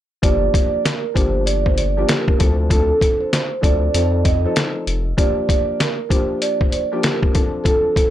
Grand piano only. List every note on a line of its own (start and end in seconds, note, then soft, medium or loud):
0.22 0.96 F3 medium
0.22 0.96 A#3 medium
0.22 0.96 D4 medium
0.22 0.96 G4 loud
1.14 1.88 F3 medium
1.14 1.89 A#3 medium
1.14 1.89 D4 medium
1.14 1.89 G4 loud
1.97 2.36 F3 medium
1.97 2.37 A#3 medium
1.97 2.37 D4 medium
1.97 2.37 G4 loud
2.38 2.68 F3 loud
2.38 2.68 C4 medium
2.38 2.68 D4 medium
2.38 2.68 A4 loud
2.69 3.43 F3 medium
2.69 3.43 C4 medium
2.69 3.44 D4 medium
2.69 3.44 A4 loud
3.61 3.92 F3 medium
3.61 3.93 C4 medium
3.61 3.93 D4 medium
3.61 3.94 A4 loud
3.94 4.40 F3 medium
3.94 4.40 C4 medium
3.94 4.40 D#4 medium
3.94 4.40 A4 loud
4.45 5.00 F3 loud
4.45 5.00 C4 medium
4.45 5.00 D#4 medium
4.45 5.01 A4 loud
5.17 5.91 F3 medium
5.17 5.91 A#3 loud
5.17 5.91 D4 medium
5.17 5.91 G4 loud
6.09 6.83 F3 medium
6.09 6.83 A#3 medium
6.09 6.84 D4 medium
6.09 6.84 G4 loud
6.92 7.31 F3 loud
6.92 7.32 A#3 medium
6.92 7.32 D4 medium
6.92 7.32 G4 loud
7.33 7.62 F3 loud
7.33 7.63 C4 medium
7.33 7.63 D4 medium
7.33 7.63 A4 loud
7.64 8.10 F3 medium
7.64 8.10 C4 medium
7.64 8.10 D4 medium
7.64 8.10 A4 loud